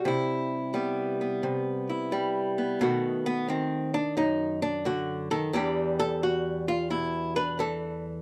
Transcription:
Already playing: G3
0.05 C3 E4
0.74 G3 B3
1.21 B3
1.43 C3
1.89 E4
2.12 G3
2.58 B3
2.81 B2 D#3 A3 F#4
3.26 B3
3.48 D#3 C4
3.94 D4
4.17 F#2 D#4
4.62 D4
4.85 D3 F#4
5.31 D#3 A4
5.53 E2 E3 G3 D4 G4
5.99 A4
6.23 F#4
6.68 F4
6.90 B2 E4
7.36 D4 B4
7.59 E3 A4

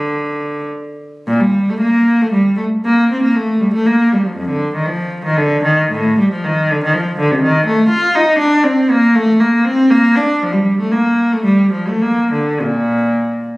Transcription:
Already playing: D3
1.27 A#2
1.40 G3
1.69 A3
1.81 A#3
2.22 A3
2.33 G3
2.57 A3
2.85 A#3
3.11 C4
3.23 A#3
3.36 A3
3.60 G3
3.74 A3
3.86 A#3
4.12 G3
4.25 F3
4.36 F2
4.49 D3
4.75 D#3
4.86 F3
5.25 D#3
5.37 D3
5.64 D#3
5.92 A2
6.19 G3
6.31 F3
6.44 D#3
6.71 D3
6.84 D#3
6.94 F3
7.18 D3
7.31 C3
7.42 D#3
7.67 A3
7.89 F4
8.15 D#4
8.39 D4
8.64 C4
8.90 A#3
9.15 A3
9.40 A#3
9.65 C4
9.90 A#3
10.16 D4
10.42 F3
10.53 G3
10.80 A3
10.92 A#3
11.33 A3
11.44 G3
11.72 F3
11.88 A3
12.02 A#3
12.32 D3
12.61 A#2

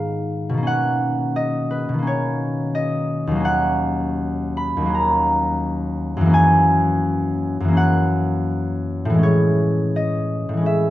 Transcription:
Already playing: G#2 D#3 B3 D#4 F4 D#5 F5
0.49 B2
0.54 D#3 A#3
0.63 C#4
0.67 F#5
1.36 D#5
1.71 B4
1.89 B2
1.94 D#3
1.99 A#3 C#4
2.07 C#5
2.75 D#5
3.27 D#2
3.31 F#3
3.36 A#3
3.40 C#4
3.45 F#5
4.57 B5
4.77 D#2
4.82 F#3 A#3
4.90 C#4
4.95 A#5
6.17 F#2
6.21 E3
6.26 A#3 C#4
6.34 G#5
7.60 F#2
7.65 E3 A#3
7.73 C#4
7.77 F#5
9.05 A2
9.10 E3
9.14 G#3
9.19 C#4
9.23 C#5
9.96 D#5
10.49 A2
10.53 E3 G#3
10.62 C#4
10.66 E5

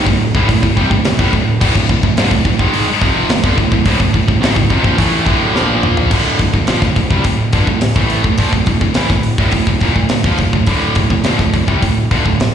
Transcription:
0.06 D1 D2 A2, kick
0.35 D1 D2 A2, kick
0.49 D1 D2 A2, kick, open hi-hat
0.63 D1 D2 A2, kick
0.77 C2 C3 G3, kick
0.91 D1 D2 A2, kick
1.05 D1 D2 A2, snare, open hi-hat
1.19 D1 D2 A2, kick
1.33 D1 D2 A2, kick
1.61 D1 D2 A2, kick, crash
1.75 D1 D2 A2, kick
1.89 D1 D2 A2, kick
2.03 D1 D2 A2, kick
2.17 G1 G2 D3, snare, open hi-hat
2.31 D1 D2 A2, kick
2.45 D1 D2 A2, kick
2.59 G#1 G#2 D#3 G#3, kick
2.74 open hi-hat
2.87 muted picked electric bass stroke, muted distorted electric guitar stroke
3.02 F1 F2 C3 F3, kick
3.29 D1 D2 A2, snare, open hi-hat
3.44 G1 G2 D3, kick
3.57 D1 D2 A2, kick
3.72 D1 D2 A2, kick
3.85 D1 D2 A2, kick, open hi-hat
4.00 D1 D2 A2, kick
4.14 D1 D2 A2, kick
4.28 D1 D2 A2, kick
4.41 G#1 G#2 D#3, snare, open hi-hat
4.56 D1 D2 A2, kick
4.70 F1 F2 C3, kick
4.84 A#1 A#2 F3, kick
4.98 A1 A2 E3 A3, kick, open hi-hat
5.26 D1 D2 A2 D3, kick
5.54 A#1 A#2 F3 A#3, snare
5.83 mid tom
5.97 floor tom
6.11 D1 D2 A2 D3, kick, crash
6.39 D1 D2 A2, kick, open hi-hat
6.53 D1 D2 A2, kick
6.67 A#1 A#2 F3, snare, open hi-hat
6.82 D1 D2 A2, kick, snare
6.96 D1 D2 A2, kick, open hi-hat
7.10 C2 C3 G3, kick
7.24 D1 D2 A2, kick, open hi-hat
7.53 G1 G2 D3, kick, open hi-hat
7.67 D1 D2 A2, kick
7.81 snare, open hi-hat
7.96 A1 A2 E3 A3, kick
8.10 open hi-hat
8.24 D1 D2 A2, kick
8.38 A#1 A#2 F3, kick, open hi-hat
8.53 D1 D2 A2, kick
8.66 D1 D2 A2, kick, open hi-hat
8.81 D1 D2 A2, kick
8.94 A1 A2 E3, snare, open hi-hat
9.10 D1 D2 A2, kick, snare
9.23 open hi-hat
9.38 D1 D2 A2, kick
9.51 D1 D2 A2, kick, open hi-hat
9.67 D1 D2 A2, kick
9.80 D#1 D#2 A#2, kick, open hi-hat
9.95 D1 D2 A2, kick
10.09 D1 D2 A2, snare, open hi-hat
10.24 A#1 A#2 F3, kick
10.38 D1 D2 A2, kick, open hi-hat
10.53 D1 D2 A2, kick
10.66 D1 D2 A2 D3, kick, open hi-hat
10.95 D1 D2 A2, kick, open hi-hat
11.10 D1 D2 A2, kick
11.24 A#1 A#2 F3, snare, open hi-hat
11.39 D1 D2 A2, kick, snare
11.53 D1 D2 A2, kick, open hi-hat
11.68 C2 C3 G3, kick
11.82 D1 D2 A2, kick, open hi-hat
12.11 G1 G2 D3, kick, open hi-hat
12.25 D1 D2 A2, kick
12.40 snare, open hi-hat

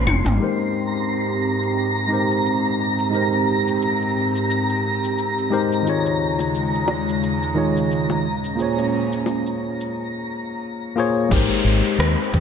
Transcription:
Already playing: G#3 A#3 C#4 C6 C7
0.07 F1, closed hi-hat, high tom, claves
0.25 G#1, closed hi-hat, mid tom, high bongo, shaker
0.37 G#2 G#3 C4 D#4 G4 A#5 A#6
0.42 A#4 C5, shaker
0.61 shaker
0.95 shaker
1.10 shaker
1.29 shaker
1.63 shaker
1.78 shaker
1.97 shaker
2.07 G#3 D#4 G4
2.12 A#4 C5
2.31 shaker
2.46 shaker
2.65 shaker
2.99 shaker
3.09 G#3 D#4 G4
3.14 A#4 C5, shaker
3.33 shaker
3.68 shaker
3.82 shaker
4.02 shaker
4.35 shaker
4.50 shaker
4.69 shaker
5.04 shaker
5.18 shaker
5.38 shaker
5.50 G#3 D#4 G4 A#4 C5
5.72 shaker
5.82 D#2 C#3 D#3 G#3 D#4 F4
5.87 G#4 C#5, shaker
6.06 shaker
6.39 high bongo, shaker
6.55 shaker
6.75 shaker
6.88 high bongo
7.09 shaker
7.24 shaker
7.43 shaker
7.54 D#3 D#4 F4 G#4 C#5, high bongo
7.77 shaker
7.91 shaker
8.10 high bongo, shaker
8.24 A#2 C#4
8.44 shaker
8.55 A#3 F4 G#4, shaker
8.61 C5 C#5
8.78 high bongo, shaker
9.13 shaker
9.26 high bongo, shaker
9.46 shaker
9.81 shaker
10.96 A#3 F4 G#4 C5 C#5
11.29 G#1 G#3 C4 D#4 G4, kick, closed hi-hat, downlifter, shaker
11.34 A#4 C5
11.52 shaker
11.65 G#1
11.85 closed hi-hat, shaker
11.99 D#2, cross-stick, closed hi-hat, shaker
12.20 shaker
12.33 D#2, kick, closed hi-hat

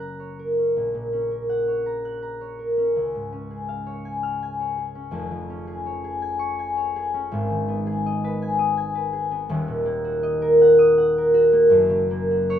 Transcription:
Already playing: F#1 F#2 C#3 C#4 A#4 C#5 F#5 C#6 F#6
0.00 A#5
0.20 C#5
0.39 A#4
0.58 C#4
0.76 A#1
0.94 A#2
1.13 C#4
1.31 A#4
1.49 F#5
1.68 C#5
1.86 A#5
2.05 F#6
2.22 A#5
2.41 C#5
2.59 A#4
2.77 C#4
2.96 C#2
3.15 G#2
3.32 C#4
3.51 G#4
3.69 F5
3.86 C#5
4.05 G#5
4.23 F6
4.43 G#5
4.60 C#5
4.78 G#4
4.95 C#4
5.11 F1 F2
5.31 F3
5.50 C#4
5.67 G#4
5.86 C#5
6.04 G#4
6.22 G#5
6.39 C#6
6.59 G#5
6.77 C#5
6.96 G#4
7.14 C#4
7.32 G#1 G#2
7.49 D#3
7.68 B3
7.87 G#4
8.06 D#5
8.24 B4
8.42 G#5
8.59 D#6
8.77 G#5
8.95 B4
9.13 G#4
9.31 B3
9.49 D#1 D#2
9.68 A#2
9.85 A#3
10.05 F#4
10.23 D#5
10.42 A#4
10.61 F#5
10.79 D#6
10.98 F#5
11.18 A#4
11.34 F#4
11.53 A#3
11.70 F#1 F#2
11.90 C#3
12.10 A#3
12.31 F#4
12.50 C#5

